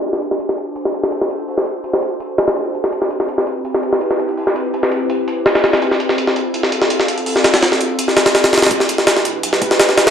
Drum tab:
HH |x---x---x---x---x---x---x---x-x-|o---x---x---x---x---x-x-x---x---|x---x---x---x---x---x---x---x-x-|o---x---x---x---x---x---x-x-x-x-|
SD |--o---o---o-------o---o---o-----|--o-------o---------o-o-------o-|--o---o---o-------o---o---o-----|--o-------o-------------o-o-o-o-|
BD |--------------------------------|--------------------------------|--------------------------------|--------------------------------|

HH |x---x---x---x---x---x---x---x-x-|o---x-x-x---x---x---x-x-x-x-xxxx|x---x---x---x---x---x---x---x-x-|
SD |--o---o---o-------o---o---o-----|--o-o-o-o-o-------o-o-o-o-o-oooo|--o---o-o-o-------o---o-o-o-o-o-|
BD |--------------------------------|--------------------------------|o-------------------o-----------|